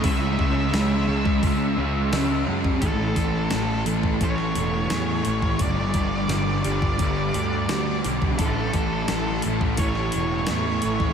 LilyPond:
<<
  \new Staff \with { instrumentName = "Lead electric guitar" } { \time 4/4 \key a \lydian \tempo 4 = 86 e''2.~ e''8 r8 | a'4. r8 cis''2 | d''4. d''2 r8 | a'4. r8 cis''2 | }
  \new Staff \with { instrumentName = "Distorted electric guitar" } { \clef bass \time 4/4 \key a \lydian <cis gis cis'>8 <gis cis'>8 <cis gis cis'>8 <gis cis'>4 <gis cis'>8 <cis gis cis'>4 | <a, e a>4 <a, e a>8 <e a>8 <a, e a>4 <a, e a>4 | <g, d g>4 <g, d g>8 <d g>8 <g, d g>4 <g, d g>4 | <a, e a>4 <a, e a>8 <e a>8 <a, e a>4 <a, e a>4 | }
  \new Staff \with { instrumentName = "Picked electric bass" } { \clef bass \time 4/4 \key a \lydian cis,8 cis,8 cis,8 cis,8 cis,8 cis,8 cis,8 fis,8 | a,,8 a,,8 a,,8 a,,8 a,,8 e,,8 e,8 a,,8 | g,,8 g,,8 g,,8 g,,8 g,,8 d,8 d,8 b,,8 | a,,8 a,,8 a,,8 a,,8 a,,8 e,,8 e,8 a,,8 | }
  \new DrumStaff \with { instrumentName = "Drums" } \drummode { \time 4/4 <hho bd>8 bd8 <hho sn>8. bd16 <hho bd>4 <hho sn>8. bd16 | <hho bd>8 <hho bd>8 <hho sn>8 hho16 bd16 <hho bd>16 sn16 hho8 <hho sn>8 hho16 bd16 | <hho bd>8 <hho bd>8 <hho sn>8 hho16 bd16 <hho bd>8 hho8 <hho sn>8 <hho sn>16 bd16 | <hho bd>8 <hho bd>8 <hho sn>8 hho16 bd16 <hho bd>16 sn16 hho8 <hho sn>8 hho16 bd16 | }
>>